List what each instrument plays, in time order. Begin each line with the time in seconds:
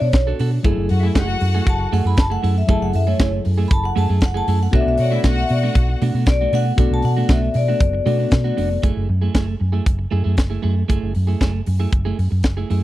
Already playing: tine electric piano B3 F#4 A4 D5
0.01 fingered electric bass B2, vibraphone C#5, muted clean electric guitar stroke
0.13 fingered electric bass B1, muted clean electric guitar stroke, kick, snare, closed hi-hat
0.27 clean electric guitar D4 F#4 A4
0.39 fingered electric bass B2, clean electric guitar D4 F#4 A4, open hi-hat
0.52 muted clean electric guitar stroke
0.63 fingered electric bass F#1, tine electric piano F#3 E4 G#4 A4, clean electric guitar A3 E4 G#4, kick, closed hi-hat
0.78 fingered electric bass F#1
0.89 fingered electric bass F#2, string section F#4 F#5, muted clean electric guitar stroke, open hi-hat
1.03 clean electric guitar A3 E4 G#4, string section E4 E5
1.15 fingered electric bass F#1, clean electric guitar A3 E4 G#4, string section F#4 F#5, kick, snare, closed hi-hat
1.29 muted clean electric guitar stroke
1.40 fingered electric bass F#2, muted clean electric guitar stroke, open hi-hat
1.55 clean electric guitar A3 E4 G#4
1.67 fingered electric bass F#1, vibraphone A5, muted clean electric guitar stroke, kick, closed hi-hat
1.80 muted clean electric guitar stroke
1.93 fingered electric bass F#2, clean electric guitar A3 E4 G#4, vibraphone F#5, open hi-hat
2.05 fingered electric bass F#2, clean electric guitar A3 E4 G#4, vibraphone B5
2.17 fingered electric bass F#1, vibraphone A5, muted clean electric guitar stroke, kick, snare, closed hi-hat
2.30 clean electric guitar A3 E4 G#4, vibraphone F#5
2.43 fingered electric bass F#2, clean electric guitar A3 E4 G#4, open hi-hat
2.55 vibraphone E5, muted clean electric guitar stroke
2.67 fingered electric bass F#1, tine electric piano F#3 E4 G#4 A4, clean electric guitar A3 E4 G#4, vibraphone A5, kick, closed hi-hat
2.82 fingered electric bass F#1, vibraphone F#5
2.93 fingered electric bass F#2, vibraphone E5, muted clean electric guitar stroke, open hi-hat
3.07 clean electric guitar A3 E4 G#4, vibraphone C#5
3.20 fingered electric bass F#1, clean electric guitar A3 E4 G#4, kick, snare, closed hi-hat
3.33 muted clean electric guitar stroke
3.45 fingered electric bass F#2, muted clean electric guitar stroke, open hi-hat
3.58 clean electric guitar A3 E4 G#4
3.68 fingered electric bass F#1, vibraphone B5, muted clean electric guitar stroke, kick, closed hi-hat
3.73 vibraphone A5
3.84 vibraphone F#5, muted clean electric guitar stroke
3.96 fingered electric bass F#2, clean electric guitar A3 E4 G#4, vibraphone A5, open hi-hat
4.09 fingered electric bass F#2, clean electric guitar A3 E4 G#4
4.21 fingered electric bass F#1, muted clean electric guitar stroke, kick, snare, closed hi-hat
4.25 vibraphone F#5
4.34 clean electric guitar A3 E4 G#4, vibraphone A5
4.48 fingered electric bass F#2, clean electric guitar A3 E4 G#4, open hi-hat
4.60 vibraphone F#5, muted clean electric guitar stroke
4.71 fingered electric bass B1, clean electric guitar A3 D4 F#4, tine electric piano B3 F#4 A4 C#5, kick, closed hi-hat
4.76 vibraphone E5
4.81 tine electric piano D5
4.86 fingered electric bass B1, vibraphone E5
4.98 fingered electric bass B2, string section F#4 F#5, vibraphone C#5 D5, muted clean electric guitar stroke, open hi-hat
5.11 clean electric guitar A3 D4 F#4, string section E4 E5, vibraphone F#5
5.24 fingered electric bass B1, clean electric guitar A3 D4 F#4, string section F#4 F#5, vibraphone F#5, kick, snare, closed hi-hat
5.38 vibraphone E5, muted clean electric guitar stroke
5.49 fingered electric bass B2, vibraphone D5, muted clean electric guitar stroke, open hi-hat
5.63 clean electric guitar A3 D4 F#4
5.75 fingered electric bass B1, kick, closed hi-hat
5.89 muted clean electric guitar stroke
6.02 fingered electric bass B2, clean electric guitar A3 D4 F#4, open hi-hat
6.14 fingered electric bass B2, clean electric guitar A3 D4 F#4
6.26 fingered electric bass B1, vibraphone D5, muted clean electric guitar stroke, kick, snare, closed hi-hat
6.41 clean electric guitar A3 D4 F#4
6.53 fingered electric bass B2, clean electric guitar A3 D4 F#4, vibraphone F#5, open hi-hat
6.66 muted clean electric guitar stroke
6.76 fingered electric bass B1, clean electric guitar A3 D4 F#4, tine electric piano B3 F#4 A4 D5, kick, closed hi-hat
6.91 fingered electric bass B1, vibraphone A5
7.02 fingered electric bass B2, vibraphone F#5, muted clean electric guitar stroke, open hi-hat
7.17 clean electric guitar A3 D4 F#4
7.29 fingered electric bass B1, clean electric guitar A3 D4 F#4, vibraphone E5, kick, snare, closed hi-hat
7.42 muted clean electric guitar stroke
7.54 fingered electric bass B2, vibraphone D5, muted clean electric guitar stroke, open hi-hat
7.68 clean electric guitar A3 D4 F#4
7.80 fingered electric bass F#1, kick, closed hi-hat
7.93 muted clean electric guitar stroke
8.05 fingered electric bass B2, clean electric guitar A3 D4 F#4, tine electric piano B3 F#4 A4 D5, open hi-hat
8.19 clean electric guitar A3 D4 F#4
8.31 fingered electric bass B2, kick, snare, closed hi-hat
8.44 clean electric guitar A3 D4 F#4
8.57 fingered electric bass F1, clean electric guitar A3 D4 F#4, open hi-hat
8.70 muted clean electric guitar stroke
8.82 fingered electric bass F#1, clean electric guitar A3 E4 G#4, kick, closed hi-hat
8.97 fingered electric bass F#1
9.09 fingered electric bass F#2, muted clean electric guitar stroke
9.22 clean electric guitar A3 E4 G#4
9.34 fingered electric bass F#1, clean electric guitar A3 E4 G#4, kick, snare, closed hi-hat
9.48 muted clean electric guitar stroke
9.60 fingered electric bass F#2, muted clean electric guitar stroke
9.72 clean electric guitar A3 E4 G#4
9.86 fingered electric bass F#1, kick, closed hi-hat
9.99 muted clean electric guitar stroke
10.11 fingered electric bass F#2, clean electric guitar A3 E4 G#4
10.24 fingered electric bass F#2, clean electric guitar A3 E4 G#4
10.37 fingered electric bass F#1, muted clean electric guitar stroke, kick, snare, closed hi-hat
10.50 clean electric guitar A3 E4 G#4
10.62 fingered electric bass F#2, clean electric guitar A3 E4 G#4
10.75 muted clean electric guitar stroke
10.88 fingered electric bass F#1, clean electric guitar A3 E4 G#4, kick, closed hi-hat
11.03 fingered electric bass F#1
11.14 fingered electric bass F#2, muted clean electric guitar stroke, open hi-hat
11.27 clean electric guitar A3 E4 G#4
11.41 fingered electric bass F#1, clean electric guitar A3 E4 G#4, kick, snare, closed hi-hat
11.54 muted clean electric guitar stroke
11.66 fingered electric bass F#2, muted clean electric guitar stroke, open hi-hat
11.79 clean electric guitar A3 E4 G#4
11.92 fingered electric bass F#1, muted clean electric guitar stroke, kick, closed hi-hat
12.05 clean electric guitar A3 E4 G#4
12.19 fingered electric bass F#2, muted clean electric guitar stroke, open hi-hat
12.31 fingered electric bass F#2, muted clean electric guitar stroke
12.43 fingered electric bass F#1, muted clean electric guitar stroke, kick, snare, closed hi-hat
12.57 clean electric guitar A3 E4 G#4
12.70 fingered electric bass F#2, clean electric guitar A3 E4 G#4, open hi-hat